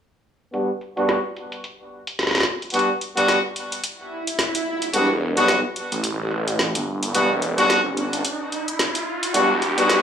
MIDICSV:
0, 0, Header, 1, 6, 480
1, 0, Start_track
1, 0, Key_signature, 1, "minor"
1, 0, Tempo, 550459
1, 470, Time_signature, 4, 2, 24, 8
1, 8737, End_track
2, 0, Start_track
2, 0, Title_t, "Horn section"
2, 0, Program_c, 0, 61
2, 465, Note_on_c, 0, 62, 72
2, 466, Note_on_c, 0, 55, 77
2, 466, Note_on_c, 0, 66, 88
2, 467, Note_on_c, 0, 59, 72
2, 608, Note_off_c, 0, 62, 0
2, 609, Note_off_c, 0, 55, 0
2, 609, Note_off_c, 0, 59, 0
2, 609, Note_off_c, 0, 66, 0
2, 848, Note_on_c, 0, 55, 87
2, 849, Note_on_c, 0, 59, 79
2, 849, Note_on_c, 0, 62, 79
2, 849, Note_on_c, 0, 66, 98
2, 1036, Note_off_c, 0, 55, 0
2, 1036, Note_off_c, 0, 59, 0
2, 1036, Note_off_c, 0, 62, 0
2, 1037, Note_off_c, 0, 66, 0
2, 2386, Note_on_c, 0, 66, 91
2, 2387, Note_on_c, 0, 55, 84
2, 2387, Note_on_c, 0, 62, 76
2, 2388, Note_on_c, 0, 59, 77
2, 2529, Note_off_c, 0, 55, 0
2, 2529, Note_off_c, 0, 62, 0
2, 2529, Note_off_c, 0, 66, 0
2, 2530, Note_off_c, 0, 59, 0
2, 2764, Note_on_c, 0, 59, 86
2, 2764, Note_on_c, 0, 62, 83
2, 2765, Note_on_c, 0, 55, 92
2, 2765, Note_on_c, 0, 66, 105
2, 2954, Note_off_c, 0, 55, 0
2, 2954, Note_off_c, 0, 59, 0
2, 2954, Note_off_c, 0, 62, 0
2, 2954, Note_off_c, 0, 66, 0
2, 4307, Note_on_c, 0, 55, 85
2, 4308, Note_on_c, 0, 59, 74
2, 4308, Note_on_c, 0, 62, 79
2, 4308, Note_on_c, 0, 66, 98
2, 4449, Note_off_c, 0, 55, 0
2, 4449, Note_off_c, 0, 66, 0
2, 4450, Note_off_c, 0, 59, 0
2, 4450, Note_off_c, 0, 62, 0
2, 4684, Note_on_c, 0, 66, 103
2, 4685, Note_on_c, 0, 55, 92
2, 4685, Note_on_c, 0, 59, 90
2, 4685, Note_on_c, 0, 62, 86
2, 4874, Note_off_c, 0, 59, 0
2, 4874, Note_off_c, 0, 66, 0
2, 4875, Note_off_c, 0, 55, 0
2, 4875, Note_off_c, 0, 62, 0
2, 6229, Note_on_c, 0, 59, 82
2, 6229, Note_on_c, 0, 66, 96
2, 6231, Note_on_c, 0, 55, 89
2, 6231, Note_on_c, 0, 62, 78
2, 6370, Note_off_c, 0, 59, 0
2, 6370, Note_off_c, 0, 66, 0
2, 6371, Note_off_c, 0, 55, 0
2, 6371, Note_off_c, 0, 62, 0
2, 6607, Note_on_c, 0, 59, 84
2, 6607, Note_on_c, 0, 62, 91
2, 6608, Note_on_c, 0, 66, 106
2, 6609, Note_on_c, 0, 55, 91
2, 6796, Note_off_c, 0, 55, 0
2, 6796, Note_off_c, 0, 59, 0
2, 6796, Note_off_c, 0, 62, 0
2, 6796, Note_off_c, 0, 66, 0
2, 8148, Note_on_c, 0, 59, 78
2, 8148, Note_on_c, 0, 62, 75
2, 8149, Note_on_c, 0, 55, 86
2, 8149, Note_on_c, 0, 66, 91
2, 8290, Note_off_c, 0, 55, 0
2, 8290, Note_off_c, 0, 59, 0
2, 8290, Note_off_c, 0, 62, 0
2, 8290, Note_off_c, 0, 66, 0
2, 8525, Note_on_c, 0, 55, 87
2, 8525, Note_on_c, 0, 59, 81
2, 8526, Note_on_c, 0, 66, 100
2, 8527, Note_on_c, 0, 62, 83
2, 8714, Note_off_c, 0, 55, 0
2, 8714, Note_off_c, 0, 59, 0
2, 8715, Note_off_c, 0, 62, 0
2, 8715, Note_off_c, 0, 66, 0
2, 8737, End_track
3, 0, Start_track
3, 0, Title_t, "Detuned saw bass"
3, 0, Program_c, 1, 39
3, 4306, Note_on_c, 1, 28, 95
3, 4665, Note_off_c, 1, 28, 0
3, 4684, Note_on_c, 1, 35, 91
3, 4905, Note_off_c, 1, 35, 0
3, 5163, Note_on_c, 1, 33, 94
3, 5864, Note_off_c, 1, 33, 0
3, 5881, Note_on_c, 1, 31, 94
3, 6210, Note_off_c, 1, 31, 0
3, 6227, Note_on_c, 1, 28, 93
3, 6585, Note_off_c, 1, 28, 0
3, 6605, Note_on_c, 1, 35, 99
3, 6825, Note_off_c, 1, 35, 0
3, 6845, Note_on_c, 1, 31, 99
3, 7172, Note_off_c, 1, 31, 0
3, 8147, Note_on_c, 1, 28, 96
3, 8505, Note_off_c, 1, 28, 0
3, 8522, Note_on_c, 1, 35, 91
3, 8737, Note_off_c, 1, 35, 0
3, 8737, End_track
4, 0, Start_track
4, 0, Title_t, "Riser"
4, 0, Program_c, 2, 103
4, 4307, Note_on_c, 2, 60, 74
4, 8737, Note_off_c, 2, 60, 0
4, 8737, End_track
5, 0, Start_track
5, 0, Title_t, "Swell"
5, 0, Program_c, 3, 103
5, 3348, Note_on_c, 3, 60, 68
5, 4309, Note_off_c, 3, 60, 0
5, 8737, End_track
6, 0, Start_track
6, 0, Title_t, "Drums"
6, 468, Note_on_c, 9, 42, 62
6, 555, Note_off_c, 9, 42, 0
6, 708, Note_on_c, 9, 42, 31
6, 795, Note_off_c, 9, 42, 0
6, 846, Note_on_c, 9, 42, 46
6, 933, Note_off_c, 9, 42, 0
6, 948, Note_on_c, 9, 38, 100
6, 948, Note_on_c, 9, 42, 64
6, 1035, Note_off_c, 9, 38, 0
6, 1035, Note_off_c, 9, 42, 0
6, 1190, Note_on_c, 9, 42, 34
6, 1277, Note_off_c, 9, 42, 0
6, 1325, Note_on_c, 9, 42, 46
6, 1413, Note_off_c, 9, 42, 0
6, 1430, Note_on_c, 9, 42, 59
6, 1517, Note_off_c, 9, 42, 0
6, 1807, Note_on_c, 9, 42, 48
6, 1895, Note_off_c, 9, 42, 0
6, 1910, Note_on_c, 9, 38, 46
6, 1910, Note_on_c, 9, 42, 57
6, 1945, Note_off_c, 9, 38, 0
6, 1945, Note_on_c, 9, 38, 52
6, 1980, Note_off_c, 9, 38, 0
6, 1980, Note_on_c, 9, 38, 60
6, 1997, Note_off_c, 9, 42, 0
6, 2016, Note_off_c, 9, 38, 0
6, 2016, Note_on_c, 9, 38, 64
6, 2049, Note_off_c, 9, 38, 0
6, 2049, Note_on_c, 9, 38, 72
6, 2049, Note_on_c, 9, 42, 57
6, 2075, Note_off_c, 9, 38, 0
6, 2075, Note_on_c, 9, 38, 82
6, 2097, Note_off_c, 9, 38, 0
6, 2097, Note_on_c, 9, 38, 87
6, 2121, Note_off_c, 9, 38, 0
6, 2121, Note_on_c, 9, 38, 96
6, 2136, Note_off_c, 9, 42, 0
6, 2209, Note_off_c, 9, 38, 0
6, 2287, Note_on_c, 9, 42, 21
6, 2357, Note_off_c, 9, 42, 0
6, 2357, Note_on_c, 9, 42, 29
6, 2388, Note_off_c, 9, 42, 0
6, 2388, Note_on_c, 9, 42, 63
6, 2433, Note_off_c, 9, 42, 0
6, 2433, Note_on_c, 9, 42, 40
6, 2521, Note_off_c, 9, 42, 0
6, 2628, Note_on_c, 9, 42, 34
6, 2715, Note_off_c, 9, 42, 0
6, 2766, Note_on_c, 9, 42, 51
6, 2853, Note_off_c, 9, 42, 0
6, 2864, Note_on_c, 9, 38, 114
6, 2864, Note_on_c, 9, 42, 65
6, 2951, Note_off_c, 9, 38, 0
6, 2951, Note_off_c, 9, 42, 0
6, 3105, Note_on_c, 9, 42, 34
6, 3192, Note_off_c, 9, 42, 0
6, 3246, Note_on_c, 9, 42, 49
6, 3333, Note_off_c, 9, 42, 0
6, 3345, Note_on_c, 9, 42, 64
6, 3432, Note_off_c, 9, 42, 0
6, 3726, Note_on_c, 9, 42, 53
6, 3813, Note_off_c, 9, 42, 0
6, 3825, Note_on_c, 9, 38, 108
6, 3825, Note_on_c, 9, 42, 63
6, 3913, Note_off_c, 9, 38, 0
6, 3913, Note_off_c, 9, 42, 0
6, 3966, Note_on_c, 9, 42, 61
6, 4053, Note_off_c, 9, 42, 0
6, 4202, Note_on_c, 9, 42, 50
6, 4289, Note_off_c, 9, 42, 0
6, 4303, Note_on_c, 9, 42, 66
6, 4390, Note_off_c, 9, 42, 0
6, 4682, Note_on_c, 9, 42, 49
6, 4770, Note_off_c, 9, 42, 0
6, 4781, Note_on_c, 9, 38, 113
6, 4781, Note_on_c, 9, 42, 68
6, 4869, Note_off_c, 9, 38, 0
6, 4869, Note_off_c, 9, 42, 0
6, 5024, Note_on_c, 9, 42, 35
6, 5111, Note_off_c, 9, 42, 0
6, 5163, Note_on_c, 9, 42, 51
6, 5250, Note_off_c, 9, 42, 0
6, 5264, Note_on_c, 9, 42, 65
6, 5351, Note_off_c, 9, 42, 0
6, 5505, Note_on_c, 9, 37, 38
6, 5592, Note_off_c, 9, 37, 0
6, 5647, Note_on_c, 9, 42, 53
6, 5734, Note_off_c, 9, 42, 0
6, 5747, Note_on_c, 9, 38, 106
6, 5834, Note_off_c, 9, 38, 0
6, 5887, Note_on_c, 9, 42, 59
6, 5974, Note_off_c, 9, 42, 0
6, 6126, Note_on_c, 9, 42, 54
6, 6214, Note_off_c, 9, 42, 0
6, 6231, Note_on_c, 9, 42, 66
6, 6318, Note_off_c, 9, 42, 0
6, 6471, Note_on_c, 9, 42, 35
6, 6558, Note_off_c, 9, 42, 0
6, 6610, Note_on_c, 9, 37, 47
6, 6610, Note_on_c, 9, 42, 53
6, 6697, Note_off_c, 9, 37, 0
6, 6697, Note_off_c, 9, 42, 0
6, 6712, Note_on_c, 9, 38, 121
6, 6712, Note_on_c, 9, 42, 71
6, 6799, Note_off_c, 9, 38, 0
6, 6799, Note_off_c, 9, 42, 0
6, 6951, Note_on_c, 9, 42, 36
6, 7039, Note_off_c, 9, 42, 0
6, 7090, Note_on_c, 9, 42, 55
6, 7177, Note_off_c, 9, 42, 0
6, 7190, Note_on_c, 9, 42, 65
6, 7277, Note_off_c, 9, 42, 0
6, 7432, Note_on_c, 9, 42, 37
6, 7519, Note_off_c, 9, 42, 0
6, 7569, Note_on_c, 9, 42, 52
6, 7656, Note_off_c, 9, 42, 0
6, 7668, Note_on_c, 9, 38, 113
6, 7668, Note_on_c, 9, 42, 66
6, 7755, Note_off_c, 9, 38, 0
6, 7755, Note_off_c, 9, 42, 0
6, 7805, Note_on_c, 9, 42, 61
6, 7892, Note_off_c, 9, 42, 0
6, 8047, Note_on_c, 9, 42, 54
6, 8135, Note_off_c, 9, 42, 0
6, 8147, Note_on_c, 9, 42, 66
6, 8234, Note_off_c, 9, 42, 0
6, 8389, Note_on_c, 9, 42, 36
6, 8476, Note_off_c, 9, 42, 0
6, 8527, Note_on_c, 9, 42, 52
6, 8614, Note_off_c, 9, 42, 0
6, 8629, Note_on_c, 9, 38, 127
6, 8629, Note_on_c, 9, 42, 67
6, 8716, Note_off_c, 9, 38, 0
6, 8716, Note_off_c, 9, 42, 0
6, 8737, End_track
0, 0, End_of_file